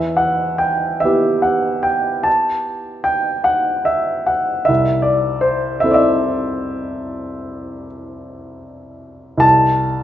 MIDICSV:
0, 0, Header, 1, 2, 480
1, 0, Start_track
1, 0, Tempo, 820793
1, 2275, Tempo, 774194
1, 2770, Time_signature, 12, 3, 24, 8
1, 3235, Tempo, 807537
1, 4675, Tempo, 780234
1, 6010, End_track
2, 0, Start_track
2, 0, Title_t, "Grand piano"
2, 0, Program_c, 0, 0
2, 0, Control_c, 0, 64, 127
2, 0, Note_on_c, 0, 40, 45
2, 0, Note_on_c, 0, 76, 59
2, 97, Note_on_c, 0, 78, 59
2, 110, Note_off_c, 0, 76, 0
2, 342, Note_on_c, 0, 79, 54
2, 350, Note_off_c, 0, 78, 0
2, 583, Note_off_c, 0, 40, 0
2, 586, Note_on_c, 0, 76, 55
2, 594, Note_off_c, 0, 79, 0
2, 608, Note_on_c, 0, 59, 33
2, 609, Note_on_c, 0, 64, 32
2, 612, Note_on_c, 0, 67, 39
2, 831, Note_on_c, 0, 78, 53
2, 837, Note_off_c, 0, 76, 0
2, 1069, Note_on_c, 0, 79, 52
2, 1078, Note_off_c, 0, 78, 0
2, 1307, Note_on_c, 0, 81, 60
2, 1314, Note_off_c, 0, 79, 0
2, 1333, Control_c, 0, 64, 0
2, 1445, Control_c, 0, 64, 127
2, 1777, Note_on_c, 0, 79, 59
2, 1790, Note_off_c, 0, 81, 0
2, 2012, Note_on_c, 0, 78, 59
2, 2025, Note_off_c, 0, 79, 0
2, 2252, Note_on_c, 0, 76, 57
2, 2264, Note_off_c, 0, 78, 0
2, 2507, Note_on_c, 0, 78, 54
2, 2517, Note_off_c, 0, 76, 0
2, 2746, Note_on_c, 0, 76, 62
2, 2748, Note_off_c, 0, 59, 0
2, 2748, Note_off_c, 0, 64, 0
2, 2750, Note_off_c, 0, 67, 0
2, 2759, Note_off_c, 0, 78, 0
2, 2768, Note_on_c, 0, 36, 46
2, 2782, Control_c, 0, 64, 0
2, 2860, Control_c, 0, 64, 127
2, 2977, Note_on_c, 0, 74, 59
2, 2989, Note_off_c, 0, 76, 0
2, 3218, Note_on_c, 0, 72, 55
2, 3225, Note_off_c, 0, 74, 0
2, 3451, Note_off_c, 0, 36, 0
2, 3452, Note_on_c, 0, 76, 58
2, 3463, Note_off_c, 0, 72, 0
2, 3471, Note_on_c, 0, 60, 33
2, 3471, Note_on_c, 0, 64, 35
2, 3478, Note_on_c, 0, 69, 37
2, 3504, Note_off_c, 0, 76, 0
2, 3515, Note_on_c, 0, 74, 50
2, 3534, Note_on_c, 0, 76, 61
2, 3557, Note_off_c, 0, 74, 0
2, 4665, Note_off_c, 0, 76, 0
2, 5606, Note_on_c, 0, 36, 48
2, 5617, Note_off_c, 0, 60, 0
2, 5617, Note_off_c, 0, 64, 0
2, 5620, Note_off_c, 0, 69, 0
2, 5621, Note_on_c, 0, 81, 72
2, 5653, Control_c, 0, 64, 0
2, 5770, Control_c, 0, 64, 127
2, 6010, Note_off_c, 0, 36, 0
2, 6010, Note_off_c, 0, 81, 0
2, 6010, End_track
0, 0, End_of_file